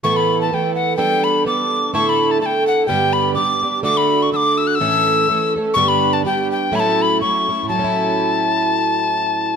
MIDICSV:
0, 0, Header, 1, 3, 480
1, 0, Start_track
1, 0, Tempo, 476569
1, 41, Time_signature, 2, 2, 24, 8
1, 5321, Tempo, 483092
1, 9574, End_track
2, 0, Start_track
2, 0, Title_t, "Tin whistle"
2, 0, Program_c, 0, 75
2, 37, Note_on_c, 0, 85, 90
2, 164, Note_on_c, 0, 83, 71
2, 180, Note_off_c, 0, 85, 0
2, 410, Note_off_c, 0, 83, 0
2, 418, Note_on_c, 0, 81, 53
2, 499, Note_off_c, 0, 81, 0
2, 499, Note_on_c, 0, 81, 59
2, 543, Note_on_c, 0, 79, 65
2, 553, Note_off_c, 0, 81, 0
2, 750, Note_off_c, 0, 79, 0
2, 756, Note_on_c, 0, 78, 64
2, 966, Note_off_c, 0, 78, 0
2, 974, Note_on_c, 0, 79, 87
2, 1247, Note_on_c, 0, 83, 72
2, 1262, Note_off_c, 0, 79, 0
2, 1466, Note_off_c, 0, 83, 0
2, 1480, Note_on_c, 0, 86, 68
2, 1924, Note_off_c, 0, 86, 0
2, 1951, Note_on_c, 0, 85, 93
2, 2105, Note_on_c, 0, 83, 79
2, 2121, Note_off_c, 0, 85, 0
2, 2329, Note_on_c, 0, 81, 64
2, 2344, Note_off_c, 0, 83, 0
2, 2422, Note_off_c, 0, 81, 0
2, 2428, Note_on_c, 0, 81, 65
2, 2476, Note_on_c, 0, 79, 70
2, 2486, Note_off_c, 0, 81, 0
2, 2683, Note_off_c, 0, 79, 0
2, 2691, Note_on_c, 0, 78, 74
2, 2879, Note_off_c, 0, 78, 0
2, 2885, Note_on_c, 0, 79, 93
2, 3152, Note_on_c, 0, 83, 74
2, 3167, Note_off_c, 0, 79, 0
2, 3363, Note_off_c, 0, 83, 0
2, 3369, Note_on_c, 0, 86, 81
2, 3828, Note_off_c, 0, 86, 0
2, 3865, Note_on_c, 0, 86, 106
2, 4000, Note_on_c, 0, 83, 84
2, 4015, Note_off_c, 0, 86, 0
2, 4255, Note_on_c, 0, 85, 61
2, 4270, Note_off_c, 0, 83, 0
2, 4353, Note_off_c, 0, 85, 0
2, 4359, Note_on_c, 0, 88, 81
2, 4394, Note_on_c, 0, 86, 88
2, 4404, Note_off_c, 0, 88, 0
2, 4609, Note_on_c, 0, 88, 84
2, 4624, Note_off_c, 0, 86, 0
2, 4704, Note_on_c, 0, 90, 76
2, 4719, Note_off_c, 0, 88, 0
2, 4787, Note_on_c, 0, 88, 110
2, 4802, Note_off_c, 0, 90, 0
2, 5566, Note_off_c, 0, 88, 0
2, 5773, Note_on_c, 0, 85, 119
2, 5916, Note_on_c, 0, 83, 94
2, 5931, Note_off_c, 0, 85, 0
2, 6165, Note_on_c, 0, 81, 65
2, 6180, Note_off_c, 0, 83, 0
2, 6274, Note_off_c, 0, 81, 0
2, 6290, Note_on_c, 0, 79, 81
2, 6537, Note_off_c, 0, 79, 0
2, 6542, Note_on_c, 0, 79, 78
2, 6781, Note_on_c, 0, 83, 85
2, 6796, Note_off_c, 0, 79, 0
2, 6825, Note_on_c, 0, 81, 92
2, 6835, Note_off_c, 0, 83, 0
2, 7046, Note_on_c, 0, 83, 75
2, 7061, Note_off_c, 0, 81, 0
2, 7230, Note_off_c, 0, 83, 0
2, 7236, Note_on_c, 0, 85, 66
2, 7684, Note_off_c, 0, 85, 0
2, 7709, Note_on_c, 0, 81, 84
2, 9574, Note_off_c, 0, 81, 0
2, 9574, End_track
3, 0, Start_track
3, 0, Title_t, "Twelve-string acoustic guitar"
3, 0, Program_c, 1, 25
3, 34, Note_on_c, 1, 45, 70
3, 40, Note_on_c, 1, 52, 69
3, 42, Note_on_c, 1, 57, 69
3, 48, Note_on_c, 1, 59, 75
3, 54, Note_on_c, 1, 69, 76
3, 513, Note_off_c, 1, 52, 0
3, 517, Note_off_c, 1, 45, 0
3, 524, Note_off_c, 1, 59, 0
3, 525, Note_on_c, 1, 52, 41
3, 531, Note_off_c, 1, 57, 0
3, 535, Note_on_c, 1, 57, 51
3, 536, Note_on_c, 1, 59, 52
3, 548, Note_off_c, 1, 69, 0
3, 552, Note_on_c, 1, 69, 52
3, 978, Note_off_c, 1, 59, 0
3, 980, Note_off_c, 1, 52, 0
3, 984, Note_off_c, 1, 69, 0
3, 984, Note_on_c, 1, 55, 76
3, 986, Note_off_c, 1, 57, 0
3, 988, Note_on_c, 1, 62, 77
3, 990, Note_on_c, 1, 59, 81
3, 996, Note_on_c, 1, 69, 88
3, 1449, Note_off_c, 1, 55, 0
3, 1459, Note_off_c, 1, 59, 0
3, 1461, Note_on_c, 1, 55, 39
3, 1465, Note_off_c, 1, 69, 0
3, 1471, Note_on_c, 1, 59, 47
3, 1474, Note_off_c, 1, 62, 0
3, 1477, Note_on_c, 1, 69, 47
3, 1478, Note_on_c, 1, 62, 58
3, 1947, Note_off_c, 1, 59, 0
3, 1948, Note_off_c, 1, 55, 0
3, 1951, Note_on_c, 1, 45, 70
3, 1951, Note_on_c, 1, 57, 81
3, 1952, Note_off_c, 1, 69, 0
3, 1956, Note_on_c, 1, 50, 71
3, 1957, Note_off_c, 1, 62, 0
3, 1961, Note_on_c, 1, 64, 85
3, 1964, Note_on_c, 1, 69, 81
3, 2421, Note_off_c, 1, 57, 0
3, 2422, Note_off_c, 1, 64, 0
3, 2423, Note_off_c, 1, 50, 0
3, 2427, Note_on_c, 1, 50, 45
3, 2428, Note_off_c, 1, 69, 0
3, 2433, Note_off_c, 1, 45, 0
3, 2433, Note_on_c, 1, 57, 44
3, 2434, Note_on_c, 1, 64, 46
3, 2440, Note_on_c, 1, 69, 55
3, 2893, Note_off_c, 1, 50, 0
3, 2897, Note_on_c, 1, 43, 70
3, 2905, Note_on_c, 1, 50, 80
3, 2905, Note_on_c, 1, 55, 74
3, 2907, Note_off_c, 1, 57, 0
3, 2911, Note_on_c, 1, 59, 75
3, 2912, Note_off_c, 1, 64, 0
3, 2912, Note_off_c, 1, 69, 0
3, 2916, Note_on_c, 1, 62, 70
3, 2916, Note_on_c, 1, 67, 75
3, 3361, Note_off_c, 1, 55, 0
3, 3373, Note_on_c, 1, 55, 49
3, 3374, Note_off_c, 1, 59, 0
3, 3382, Note_off_c, 1, 62, 0
3, 3386, Note_off_c, 1, 43, 0
3, 3387, Note_on_c, 1, 59, 45
3, 3390, Note_off_c, 1, 50, 0
3, 3390, Note_off_c, 1, 67, 0
3, 3394, Note_on_c, 1, 62, 53
3, 3402, Note_on_c, 1, 67, 49
3, 3642, Note_off_c, 1, 67, 0
3, 3654, Note_on_c, 1, 67, 42
3, 3655, Note_off_c, 1, 55, 0
3, 3655, Note_off_c, 1, 59, 0
3, 3658, Note_off_c, 1, 62, 0
3, 3667, Note_on_c, 1, 59, 35
3, 3670, Note_on_c, 1, 62, 41
3, 3674, Note_on_c, 1, 55, 32
3, 3852, Note_off_c, 1, 62, 0
3, 3853, Note_off_c, 1, 55, 0
3, 3854, Note_off_c, 1, 59, 0
3, 3857, Note_on_c, 1, 50, 65
3, 3858, Note_on_c, 1, 57, 71
3, 3865, Note_on_c, 1, 62, 71
3, 3869, Note_off_c, 1, 67, 0
3, 3874, Note_on_c, 1, 66, 79
3, 4340, Note_off_c, 1, 50, 0
3, 4348, Note_off_c, 1, 57, 0
3, 4351, Note_off_c, 1, 62, 0
3, 4352, Note_on_c, 1, 50, 48
3, 4356, Note_off_c, 1, 66, 0
3, 4363, Note_on_c, 1, 57, 43
3, 4369, Note_on_c, 1, 62, 55
3, 4374, Note_on_c, 1, 66, 48
3, 4831, Note_off_c, 1, 57, 0
3, 4837, Note_off_c, 1, 50, 0
3, 4837, Note_on_c, 1, 45, 67
3, 4841, Note_on_c, 1, 52, 66
3, 4842, Note_off_c, 1, 66, 0
3, 4843, Note_on_c, 1, 57, 73
3, 4845, Note_off_c, 1, 62, 0
3, 4846, Note_on_c, 1, 69, 75
3, 4850, Note_on_c, 1, 61, 73
3, 5310, Note_off_c, 1, 52, 0
3, 5313, Note_off_c, 1, 57, 0
3, 5319, Note_off_c, 1, 61, 0
3, 5321, Note_off_c, 1, 45, 0
3, 5322, Note_on_c, 1, 52, 45
3, 5325, Note_on_c, 1, 57, 52
3, 5326, Note_off_c, 1, 69, 0
3, 5330, Note_on_c, 1, 61, 46
3, 5343, Note_on_c, 1, 69, 49
3, 5584, Note_off_c, 1, 69, 0
3, 5592, Note_off_c, 1, 52, 0
3, 5593, Note_off_c, 1, 57, 0
3, 5596, Note_off_c, 1, 61, 0
3, 5596, Note_on_c, 1, 69, 47
3, 5608, Note_on_c, 1, 61, 42
3, 5621, Note_on_c, 1, 57, 40
3, 5794, Note_on_c, 1, 43, 80
3, 5798, Note_off_c, 1, 57, 0
3, 5799, Note_on_c, 1, 50, 80
3, 5800, Note_on_c, 1, 55, 71
3, 5802, Note_off_c, 1, 69, 0
3, 5802, Note_on_c, 1, 59, 78
3, 5807, Note_off_c, 1, 61, 0
3, 5811, Note_on_c, 1, 62, 87
3, 5812, Note_on_c, 1, 67, 67
3, 6262, Note_off_c, 1, 55, 0
3, 6266, Note_off_c, 1, 59, 0
3, 6274, Note_on_c, 1, 55, 52
3, 6276, Note_off_c, 1, 43, 0
3, 6277, Note_off_c, 1, 62, 0
3, 6278, Note_off_c, 1, 50, 0
3, 6278, Note_on_c, 1, 59, 50
3, 6285, Note_off_c, 1, 67, 0
3, 6289, Note_on_c, 1, 62, 46
3, 6295, Note_on_c, 1, 67, 54
3, 6741, Note_off_c, 1, 55, 0
3, 6744, Note_on_c, 1, 45, 69
3, 6745, Note_on_c, 1, 54, 70
3, 6749, Note_off_c, 1, 59, 0
3, 6753, Note_on_c, 1, 57, 73
3, 6754, Note_off_c, 1, 62, 0
3, 6755, Note_off_c, 1, 67, 0
3, 6758, Note_on_c, 1, 61, 73
3, 6759, Note_on_c, 1, 64, 87
3, 7231, Note_off_c, 1, 45, 0
3, 7238, Note_off_c, 1, 57, 0
3, 7239, Note_off_c, 1, 54, 0
3, 7242, Note_on_c, 1, 57, 47
3, 7243, Note_on_c, 1, 54, 48
3, 7249, Note_off_c, 1, 61, 0
3, 7253, Note_on_c, 1, 61, 45
3, 7256, Note_off_c, 1, 64, 0
3, 7260, Note_on_c, 1, 64, 45
3, 7501, Note_off_c, 1, 64, 0
3, 7509, Note_off_c, 1, 61, 0
3, 7511, Note_off_c, 1, 57, 0
3, 7512, Note_off_c, 1, 54, 0
3, 7513, Note_on_c, 1, 64, 41
3, 7521, Note_on_c, 1, 61, 37
3, 7531, Note_on_c, 1, 57, 31
3, 7657, Note_on_c, 1, 45, 66
3, 7720, Note_off_c, 1, 64, 0
3, 7720, Note_on_c, 1, 54, 68
3, 7725, Note_off_c, 1, 61, 0
3, 7730, Note_off_c, 1, 57, 0
3, 7771, Note_on_c, 1, 57, 69
3, 7814, Note_on_c, 1, 61, 74
3, 7865, Note_on_c, 1, 64, 78
3, 9574, Note_off_c, 1, 45, 0
3, 9574, Note_off_c, 1, 54, 0
3, 9574, Note_off_c, 1, 57, 0
3, 9574, Note_off_c, 1, 61, 0
3, 9574, Note_off_c, 1, 64, 0
3, 9574, End_track
0, 0, End_of_file